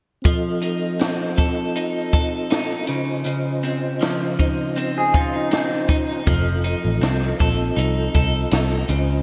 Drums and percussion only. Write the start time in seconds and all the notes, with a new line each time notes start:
0.25 kick, closed hi-hat
0.62 closed hi-hat
1.01 snare, closed hi-hat
1.38 kick, closed hi-hat
1.76 closed hi-hat
2.13 kick, closed hi-hat
2.50 snare, closed hi-hat
2.87 closed hi-hat
3.26 closed hi-hat
3.63 closed hi-hat
4.02 snare, closed hi-hat
4.39 kick, closed hi-hat
4.77 closed hi-hat
5.14 kick, closed hi-hat
5.51 snare, closed hi-hat
5.88 kick, closed hi-hat
6.27 kick, closed hi-hat
6.64 closed hi-hat
7.03 snare, closed hi-hat
7.39 kick, closed hi-hat
7.78 closed hi-hat
8.14 kick, closed hi-hat
8.51 snare, closed hi-hat
8.89 closed hi-hat